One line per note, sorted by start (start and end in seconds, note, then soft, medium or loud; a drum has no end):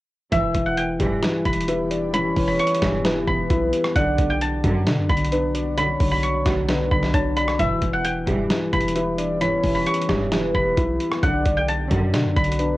0.32 0.54 E1 loud
0.32 0.42 B1 medium
0.32 0.42 G2 medium
0.32 3.92 E3 medium
0.32 0.53 E3 medium
0.32 0.42 E3 loud
0.32 7.55 B3 medium
0.32 3.92 G4 medium
0.32 0.75 E5 loud
0.32 2.04 E5 loud
0.32 kick loud
0.32 closed hi-hat medium
0.55 0.98 E1 loud
0.55 1.21 E3 medium
0.55 kick loud
0.55 closed hi-hat medium
0.66 0.83 F#5 medium
0.77 2.33 G5 medium
0.77 closed hi-hat medium
1.00 1.22 E1 loud
1.00 1.43 B1 medium
1.00 1.43 G2 loud
1.00 1.43 E3 loud
1.00 2.14 G3 medium
1.00 kick loud
1.00 closed hi-hat medium
1.23 1.44 E3 loud
1.23 snare loud
1.23 closed hi-hat medium
1.45 2.33 E1 loud
1.45 2.12 E3 medium
1.45 2.13 B5 medium
1.45 kick loud
1.45 closed hi-hat soft
1.53 closed hi-hat medium
1.61 closed hi-hat medium
1.68 2.82 E4 medium
1.68 1.90 B4 medium
1.68 closed hi-hat medium
1.91 2.13 D5 medium
1.91 closed hi-hat medium
2.14 2.23 B1 medium
2.14 2.23 G2 medium
2.14 2.23 E3 medium
2.14 2.35 E3 medium
2.14 3.01 C#5 loud
2.14 2.47 B5 loud
2.14 closed hi-hat medium
2.36 2.58 E1 loud
2.36 3.03 E3 medium
2.36 kick loud
2.36 open hi-hat medium
2.48 3.27 B5 medium
2.59 3.86 C#6 loud
2.59 closed hi-hat medium
2.67 closed hi-hat medium
2.74 closed hi-hat medium
2.82 3.26 E1 loud
2.82 3.25 B1 loud
2.82 3.25 G2 loud
2.82 3.25 E3 loud
2.82 3.96 G3 medium
2.82 kick loud
2.82 cross-stick medium
2.82 snare medium
2.82 closed hi-hat medium
3.05 3.26 E3 medium
3.05 3.92 B4 loud
3.05 snare loud
3.05 closed hi-hat medium
3.27 3.49 E1 loud
3.27 3.96 E3 medium
3.27 4.63 B5 medium
3.27 kick loud
3.50 3.72 B1 loud
3.50 3.96 E4 loud
3.50 kick loud
3.50 closed hi-hat medium
3.73 closed hi-hat medium
3.84 cross-stick loud
3.96 4.05 B1 medium
3.96 4.17 B1 loud
3.96 4.05 F#2 medium
3.96 4.05 D3 loud
3.96 4.17 D3 loud
3.96 7.56 D4 medium
3.96 7.56 F#4 medium
3.96 4.38 D5 loud
3.96 4.36 F#5 loud
3.96 kick loud
3.96 closed hi-hat medium
4.18 4.62 B1 loud
4.18 4.85 D3 medium
4.18 kick loud
4.18 closed hi-hat medium
4.30 5.85 G5 medium
4.41 5.86 A5 medium
4.41 closed hi-hat medium
4.64 5.07 B1 medium
4.64 4.88 F#2 loud
4.64 5.07 F#2 loud
4.64 5.07 D3 loud
4.64 5.77 F#3 medium
4.64 kick loud
4.64 closed hi-hat medium
4.86 4.99 B2 loud
4.86 5.08 D3 loud
4.86 snare loud
4.86 closed hi-hat medium
4.98 5.09 F#2 loud
5.09 5.97 B1 loud
5.09 5.76 D3 medium
5.09 5.77 B5 medium
5.09 kick loud
5.09 closed hi-hat soft
5.17 closed hi-hat medium
5.24 closed hi-hat medium
5.32 6.46 D4 medium
5.32 5.54 B4 medium
5.32 closed hi-hat medium
5.55 5.76 D5 medium
5.55 closed hi-hat medium
5.77 5.87 B1 medium
5.77 5.87 F#2 medium
5.77 5.99 D3 medium
5.77 5.87 D3 medium
5.77 6.64 C#5 loud
5.77 6.11 B5 loud
5.77 closed hi-hat medium
6.00 6.44 B1 loud
6.00 6.67 D3 medium
6.00 kick loud
6.00 open hi-hat medium
6.11 6.91 B5 medium
6.23 7.49 C#6 medium
6.23 closed hi-hat medium
6.46 6.89 B1 loud
6.46 6.89 D2 loud
6.46 6.89 B2 loud
6.46 6.89 F#3 loud
6.46 7.59 F#3 medium
6.46 kick loud
6.46 cross-stick medium
6.46 snare medium
6.46 closed hi-hat medium
6.68 6.90 D3 medium
6.68 7.11 B4 medium
6.68 snare loud
6.68 closed hi-hat medium
6.91 7.13 B1 loud
6.91 7.59 D3 medium
6.91 7.36 B5 medium
6.91 kick loud
7.03 snare medium
7.14 7.57 B1 loud
7.14 7.59 D4 medium
7.14 7.35 C#5 medium
7.14 8.59 A5 medium
7.14 kick loud
7.14 closed hi-hat medium
7.36 7.58 D5 medium
7.36 8.72 B5 medium
7.36 closed hi-hat medium
7.48 cross-stick loud
7.59 7.81 E1 loud
7.59 7.69 B1 medium
7.59 7.69 G2 medium
7.59 7.81 E3 loud
7.59 7.69 E3 medium
7.59 11.19 E3 medium
7.59 12.77 B3 medium
7.59 11.19 G4 medium
7.59 8.02 E5 loud
7.59 9.32 E5 loud
7.59 kick loud
7.59 closed hi-hat medium
7.82 8.26 E1 loud
7.82 8.48 E3 medium
7.82 kick loud
7.82 closed hi-hat medium
7.93 8.11 F#5 medium
8.05 9.60 G5 medium
8.05 closed hi-hat medium
8.27 8.49 E1 loud
8.27 8.71 B1 medium
8.27 8.71 G2 loud
8.27 8.71 E3 loud
8.27 9.41 G3 medium
8.27 kick loud
8.27 closed hi-hat medium
8.50 8.71 E3 loud
8.50 snare loud
8.50 closed hi-hat medium
8.73 9.60 E1 loud
8.73 9.40 E3 medium
8.73 9.41 B5 medium
8.73 kick loud
8.73 closed hi-hat soft
8.81 closed hi-hat medium
8.88 closed hi-hat medium
8.96 10.09 E4 medium
8.96 9.17 B4 medium
8.96 closed hi-hat medium
9.18 9.40 D5 medium
9.18 closed hi-hat medium
9.41 9.51 B1 medium
9.41 9.51 G2 medium
9.41 9.51 E3 medium
9.41 9.62 E3 medium
9.41 10.28 C#5 loud
9.41 9.75 B5 loud
9.41 closed hi-hat medium
9.64 9.86 E1 loud
9.64 10.31 E3 medium
9.64 kick loud
9.64 open hi-hat medium
9.75 10.54 B5 medium
9.87 11.13 C#6 loud
9.87 closed hi-hat medium
9.94 closed hi-hat medium
10.02 closed hi-hat medium
10.09 10.53 E1 loud
10.09 10.52 B1 loud
10.09 10.52 G2 loud
10.09 10.52 E3 medium
10.09 11.23 G3 medium
10.09 kick loud
10.09 cross-stick medium
10.09 snare medium
10.09 closed hi-hat medium
10.32 10.53 E3 medium
10.32 11.19 B4 loud
10.32 snare loud
10.32 closed hi-hat medium
10.55 10.77 E1 loud
10.55 11.23 E3 medium
10.55 11.90 B5 medium
10.55 kick loud
10.77 10.99 B1 loud
10.77 11.23 E4 loud
10.77 kick loud
10.77 closed hi-hat medium
11.00 closed hi-hat medium
11.12 cross-stick loud
11.23 11.45 B1 loud
11.23 11.33 B1 medium
11.23 11.33 F#2 medium
11.23 11.33 D3 loud
11.23 11.44 D3 loud
11.23 12.77 D4 medium
11.23 12.77 F#4 medium
11.23 11.66 D5 loud
11.23 11.63 F#5 medium
11.23 kick loud
11.23 closed hi-hat medium
11.45 11.89 B1 loud
11.45 12.12 D3 medium
11.45 kick loud
11.45 closed hi-hat medium
11.57 12.77 G5 medium
11.68 12.77 A5 medium
11.68 closed hi-hat medium
11.91 12.34 B1 medium
11.91 12.15 F#2 loud
11.91 12.34 F#2 loud
11.91 12.34 D3 loud
11.91 12.77 F#3 medium
11.91 kick loud
11.91 closed hi-hat medium
12.14 12.27 B2 loud
12.14 12.35 D3 loud
12.14 snare loud
12.14 closed hi-hat medium
12.25 12.36 F#2 loud
12.36 12.77 B1 loud
12.36 12.77 D3 medium
12.36 12.77 B5 medium
12.36 kick loud
12.36 closed hi-hat soft
12.44 closed hi-hat medium
12.52 closed hi-hat medium
12.59 12.77 D4 medium
12.59 12.77 B4 medium
12.59 closed hi-hat medium